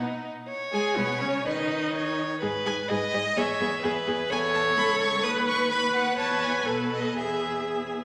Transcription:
Already playing: F#5
0.00 B2 B3 D#4
0.48 C#5
0.72 G#3 G#4 G#5
0.97 B2 B3 B4
1.21 C#3 C#4 C#5
1.46 D#3 D#4 B4 D#5
1.93 C#5
2.41 G#2 G#4 B4
2.65 G#2 G#4 G#5
2.89 G#2 G#4 B4 D#5
3.13 G#2 G#4 D#5
3.37 E2 G#4 C#5 E5
3.60 E2 G#4
3.82 E2 G#4 B4
4.07 E2 G#4
4.30 E2 A4 C#5 G#5
4.54 A5
4.77 C#2 B5
5.02 C#6
5.23 D#2 B4 D#6
5.48 C#6
5.71 B4 B5
5.95 F#5
6.17 E2 B4 C#5 A5
6.44 G#5
6.66 B2 A4 B4
6.94 D#5
7.16 E2 G#4 E5

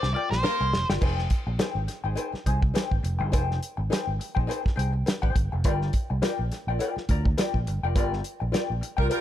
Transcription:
Already playing: D5
0.03 C2, muted hollow-body jazz guitar stroke, snare
0.14 F4 A#4 D5 G5
0.31 A#1 C5, muted hollow-body jazz guitar stroke, snare
0.43 A#3 A#4, muted hollow-body jazz guitar stroke, snare, cowbell
0.61 C2, muted hollow-body jazz guitar stroke
0.73 F1, snare
0.90 G1 F4 A#4 D5 G5, snare
1.01 F1 D#4 G#4 C5 G5, kick, crash, cowbell
1.19 snare
1.30 kick, closed hi-hat
1.47 A#1, muted hollow-body jazz guitar stroke
1.59 D#4 G#4 C5 G5, snare, closed hi-hat, cowbell
1.75 G#1
1.87 muted hollow-body jazz guitar stroke, snare, closed hi-hat
2.04 G#1 D#4 G#4 C5 G5
2.15 D#4 G#4 C5 G5, closed hi-hat, cowbell
2.32 muted hollow-body jazz guitar stroke, muted fingered electric bass stroke, snare
2.46 C2 D#4 G#4 C5 G#5, kick, closed hi-hat
2.62 muted hollow-body jazz guitar stroke, kick
2.74 D#4 G#4 C5 G5, snare, closed hi-hat, cowbell
2.91 G#1, kick
3.03 F1, muted hollow-body jazz guitar stroke, closed hi-hat
3.19 G1 D#4 G#4 C5 G5
3.32 F1 D#4 G#4 C5 G5, kick, closed hi-hat, cowbell
3.51 snare
3.63 closed hi-hat
3.77 G#1, muted hollow-body jazz guitar stroke
3.90 D#4 G#4 C5 G5, snare, closed hi-hat, cowbell
4.07 G#1
4.19 muted hollow-body jazz guitar stroke, closed hi-hat
4.35 A#1 D#4 G#4 C5 G5, kick
4.47 D#4 G#4 C5 G5, closed hi-hat, cowbell
4.63 muted hollow-body jazz guitar stroke, muted fingered electric bass stroke, kick
4.67 snare
4.76 C2 D#4 G#4 C5 G5, closed hi-hat
4.92 muted hollow-body jazz guitar stroke
5.06 muted hollow-body jazz guitar stroke, snare, closed hi-hat, cowbell
5.22 G#1 D#4 G#4 C5 G5, kick
5.35 G1, muted hollow-body jazz guitar stroke, kick, closed hi-hat
5.52 F1, muted hollow-body jazz guitar stroke
5.64 G1 F4 A#4 D5 G5, kick, closed hi-hat, cowbell
5.82 snare
5.93 kick, closed hi-hat
6.10 C2, muted hollow-body jazz guitar stroke
6.22 F4 A#4 D5 G5, snare, closed hi-hat, cowbell
6.39 A#1
6.52 muted hollow-body jazz guitar stroke, snare, closed hi-hat
6.67 A#1 F4 A#4 D5 G5
6.79 F4 A#4 D5 G5, closed hi-hat, cowbell
6.96 muted hollow-body jazz guitar stroke, muted fingered electric bass stroke, snare
7.09 D2 F4 A#4 D5 A#5, kick, closed hi-hat
7.25 muted hollow-body jazz guitar stroke, kick
7.38 F4 A#4 D5 G5, snare, closed hi-hat, cowbell
7.54 A#1, kick
7.67 G1, muted hollow-body jazz guitar stroke, closed hi-hat
7.83 F1 F4 A#4 D5 G5
7.96 G1 F4 A#4 D5 G5, kick, closed hi-hat, cowbell
8.13 snare
8.24 closed hi-hat
8.40 A#1, muted hollow-body jazz guitar stroke
8.52 F4 A#4 D5 G5, snare, closed hi-hat, cowbell
8.70 A#1
8.81 muted hollow-body jazz guitar stroke, closed hi-hat
8.97 C2 G3 F4 A#4 D5 G5, kick
9.10 G3 F4 A#4 D5 G5, closed hi-hat, cowbell

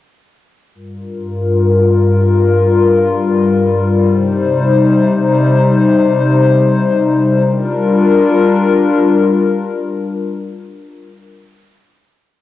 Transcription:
0.74 G2 G3 F4 A#4
4.10 C3 D#4 C5
7.46 G3 D4 F4 A#4

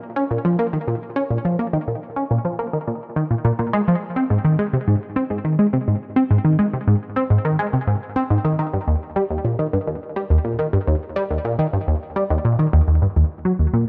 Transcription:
0.16 C#4
0.31 A#2
0.45 F3
0.59 A#3
0.73 D#3
0.88 A#2
1.16 C#4
1.30 A#2
1.45 F3
1.59 A#3
1.73 D#3
1.88 A#2
2.16 C#4
2.31 A#2
2.45 F3
2.59 A#3
2.73 D#3
2.87 A#2
3.16 D#3
3.31 A#2
3.45 A#2
3.59 A#2
3.73 G#3
3.88 F3
4.16 C4
4.30 G#2
4.45 D#3
4.59 G#3
4.73 C3
4.88 G#2
5.16 C4
5.30 G#2
5.45 D#3
5.59 G#3
5.73 C3
5.88 G#2
6.16 C4
6.31 G#2
6.45 D#3
6.59 G#3
6.73 C3
6.88 G#2
7.16 C4
7.30 G#2
7.45 D#3
7.59 G#3
7.73 C3
7.87 G#2
8.16 C4
8.30 G#2
8.45 D#3
8.59 D#3
8.73 G2
8.88 D#2
9.16 G3
9.30 D#2
9.45 A#2
9.59 D#3
9.73 G2
9.87 D#2
10.16 G3
10.30 D#2
10.45 A#2
10.59 D#3
10.73 G2
10.87 D#2
11.16 G3
11.30 D#2
11.45 A#2
11.59 D#3
11.73 G2
11.87 D#2
12.16 G3
12.30 D#2
12.45 A#2
12.59 D#3
12.73 D#2
12.88 D#2
13.02 G2
13.16 D#2
13.45 F#3
13.59 D#2
13.74 A#2

